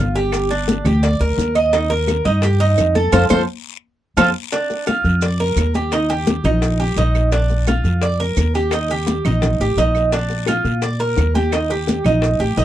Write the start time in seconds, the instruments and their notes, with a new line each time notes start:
Already playing: upright bass G1, cuban tres F4
0.15 cuban tres G4, high bongo, short guiro, maracas
0.32 high bongo, high conga, long guiro, claves, maracas
0.50 cuban tres D4, high bongo, high conga, maracas
0.68 high bongo, high conga, short guiro, maracas
0.85 upright bass D2, cuban tres G4, high bongo, high conga, low conga, short guiro, claves, maracas
1.03 cuban tres D5, high bongo, high conga, long guiro, maracas
1.20 upright bass D2, cuban tres A#4, high conga, maracas
1.37 upright bass D#2, high bongo, low bongo, high conga, short guiro, maracas
1.55 cuban tres D#5, high bongo, high conga, short guiro, claves, maracas
1.73 cuban tres D#4, high bongo, high conga, long guiro, maracas
1.90 cuban tres A#4, high bongo, high conga, maracas
2.08 high bongo, high conga, short guiro, claves, maracas
2.25 upright bass G2, cuban tres D#4, high bongo, high conga, short guiro, maracas
2.42 cuban tres G4, high bongo, high conga, long guiro, maracas
2.60 cuban tres D#4, high conga, maracas
2.78 upright bass F2, high bongo, low bongo, high conga, short guiro, claves, maracas
2.95 cuban tres A4, high bongo, high conga, short guiro, maracas
3.12 upright bass F2, cuban tres F4 A4 C5, low bongo, high conga, long guiro, claves, maracas
3.30 upright bass F2, cuban tres F4 A4 C5, low bongo, high conga, long guiro, claves, maracas
4.17 upright bass F2, cuban tres F4 A4 C5, low bongo, high conga, long guiro, claves, maracas
4.52 cuban tres D4, high bongo, high conga, long guiro, maracas
4.70 high bongo, high conga, maracas
4.87 cuban tres F4, high bongo, high conga, short guiro, claves, maracas
5.04 upright bass F2, high bongo, high conga, short guiro, maracas
5.22 cuban tres D5, high bongo, high conga, long guiro, maracas
5.40 cuban tres A#4, high conga, maracas
5.56 upright bass D#2, high bongo, low bongo, high conga, short guiro, claves, maracas
5.74 cuban tres G4, high bongo, high conga, short guiro, maracas
5.92 cuban tres D#4, high bongo, high conga, long guiro, claves, maracas
6.10 cuban tres G4, high bongo, high conga, maracas
6.27 high bongo, high conga, short guiro, maracas
6.44 upright bass A#1, cuban tres D#4, high bongo, high conga, low conga, short guiro, claves, maracas
6.62 high bongo, high conga, long guiro, maracas
6.80 cuban tres G4, high conga, maracas
6.96 upright bass A#1, cuban tres D#4, high bongo, low bongo, high conga, short guiro, maracas
7.15 high bongo, high conga, short guiro, claves, maracas
7.32 cuban tres D4, high bongo, high conga, long guiro, maracas
7.50 high bongo, high conga, maracas
7.67 cuban tres F4, high bongo, high conga, short guiro, claves, maracas
7.84 upright bass F2, high bongo, high conga, short guiro, maracas
8.02 cuban tres D5, high bongo, high conga, long guiro, maracas
8.20 cuban tres A#4, high conga, maracas
8.37 upright bass D#2, high bongo, low bongo, high conga, short guiro, claves, maracas
8.54 cuban tres G4, high bongo, short guiro, maracas
8.71 cuban tres D#4, high bongo, high conga, long guiro, claves, maracas
8.89 cuban tres G4, high bongo, high conga, maracas
9.07 high bongo, high conga, short guiro, maracas
9.25 upright bass A#1, cuban tres D#4, high bongo, high conga, low conga, short guiro, claves, maracas
9.42 high bongo, high conga, low conga, long guiro, maracas
9.60 upright bass A1, cuban tres G4, high conga, maracas
9.77 upright bass A#1, cuban tres D#4, high bongo, low bongo, high conga, short guiro, maracas
9.95 high bongo, high conga, short guiro, claves, maracas
10.12 cuban tres D4, high bongo, high conga, long guiro, maracas
10.30 high bongo, high conga, maracas
10.46 cuban tres F4, high bongo, high conga, short guiro, claves, maracas
10.64 upright bass A#2, high bongo, high conga, short guiro, maracas
10.82 cuban tres D5, high bongo, high conga, long guiro, maracas
11.00 cuban tres A#4, high conga, maracas
11.17 upright bass D#2, high bongo, low bongo, high conga, short guiro, claves, maracas
11.35 cuban tres G4, high bongo, high conga, short guiro, maracas
11.52 cuban tres D#4, high bongo, high conga, long guiro, claves, maracas
11.70 cuban tres G4, high bongo, high conga, maracas
11.87 high bongo, high conga, short guiro, maracas
12.04 upright bass A#1, cuban tres D#4, high bongo, high conga, low conga, short guiro, claves, maracas
12.22 high bongo, high conga, long guiro, maracas
12.40 upright bass A1, cuban tres G4, high conga, maracas
12.57 upright bass A#1, cuban tres D#4, high bongo, low bongo, high conga, short guiro, maracas